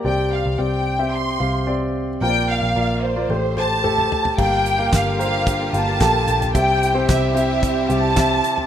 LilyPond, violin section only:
\new Staff \with { instrumentName = "Violin section" } { \time 4/4 \key g \dorian \tempo 4 = 111 g''8 f''8 g''4 c'''4 r4 | g''8 f''4 c''4 a''4. | g''4 f''8 f''4 a''4. | g''4 e''8 e''4 a''4. | }